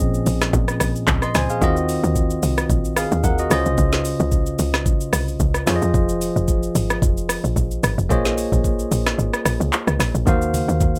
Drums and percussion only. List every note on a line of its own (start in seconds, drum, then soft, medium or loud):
0.14 shaker medium
0.26 open hi-hat medium
0.26 shaker loud
0.41 cross-stick loud
0.41 snare medium
0.41 shaker medium
0.53 kick loud
0.53 shaker medium
0.68 cross-stick medium
0.68 shaker medium
0.80 cross-stick loud
0.80 open hi-hat medium
0.80 shaker loud
0.96 shaker medium
1.07 kick medium
1.07 clap loud
1.07 shaker medium
1.22 cross-stick medium
1.22 shaker medium
1.35 cross-stick loud
1.35 snare medium
1.35 open hi-hat medium
1.35 shaker medium
1.50 shaker medium
1.62 kick loud
1.62 shaker medium
1.77 shaker medium
1.89 open hi-hat medium
1.89 shaker loud
2.04 shaker medium
2.16 kick loud
2.16 shaker medium
2.30 shaker medium
2.43 open hi-hat medium
2.43 shaker loud
2.58 cross-stick loud
2.58 shaker medium
2.70 kick loud
2.70 shaker medium
2.85 shaker medium
2.96 cross-stick loud
2.96 open hi-hat medium
2.96 shaker loud
3.12 shaker medium
3.24 kick medium
3.24 shaker medium
3.38 shaker medium
3.51 cross-stick loud
3.51 open hi-hat medium
3.51 shaker medium
3.66 shaker medium
3.78 kick loud
3.78 shaker medium
3.92 snare medium
3.92 shaker medium
4.05 open hi-hat medium
4.05 shaker loud
4.20 shaker soft
4.31 kick medium
4.31 shaker medium
4.46 shaker medium
4.59 open hi-hat medium
4.59 shaker loud
4.74 cross-stick loud
4.74 snare medium
4.74 shaker medium
4.86 kick loud
4.86 shaker medium
5.01 shaker medium
5.13 cross-stick loud
5.13 open hi-hat medium
5.13 shaker loud
5.28 shaker medium
5.40 kick medium
5.40 shaker medium
5.54 cross-stick medium
5.54 shaker medium
5.67 cross-stick medium
5.67 snare medium
5.67 open hi-hat medium
5.67 shaker loud
5.82 shaker medium
5.94 kick loud
5.94 shaker medium
6.09 shaker medium
6.21 open hi-hat medium
6.21 shaker loud
6.36 shaker medium
6.48 kick loud
6.48 shaker medium
6.63 shaker medium
6.75 open hi-hat medium
6.75 shaker loud
6.90 cross-stick loud
6.90 shaker medium
7.02 kick loud
7.02 shaker medium
7.17 shaker medium
7.29 cross-stick medium
7.29 open hi-hat medium
7.29 shaker loud
7.45 shaker medium
7.56 kick medium
7.56 shaker medium
7.71 shaker medium
7.83 cross-stick loud
7.83 open hi-hat medium
7.83 shaker loud
7.98 shaker medium
8.10 kick loud
8.10 shaker medium
8.25 snare medium
8.25 shaker medium
8.38 open hi-hat medium
8.38 shaker loud
8.52 kick loud
8.52 shaker medium
8.64 kick loud
8.64 shaker medium
8.79 shaker medium
8.92 open hi-hat medium
8.92 shaker loud
9.06 cross-stick loud
9.06 snare medium
9.06 shaker medium
9.19 shaker medium
9.33 cross-stick medium
9.33 shaker medium
9.45 cross-stick loud
9.45 open hi-hat medium
9.45 shaker loud
9.61 shaker medium
9.73 clap loud
9.73 shaker medium
9.87 cross-stick medium
9.87 shaker medium
10.00 cross-stick loud
10.00 snare medium
10.00 open hi-hat medium
10.00 shaker loud
10.15 shaker medium
10.27 kick loud
10.27 low conga medium
10.27 shaker medium
10.42 shaker medium
10.54 open hi-hat medium
10.54 high conga medium
10.54 shaker loud
10.69 shaker medium
10.81 kick medium
10.81 low conga medium
10.81 shaker medium
10.95 shaker medium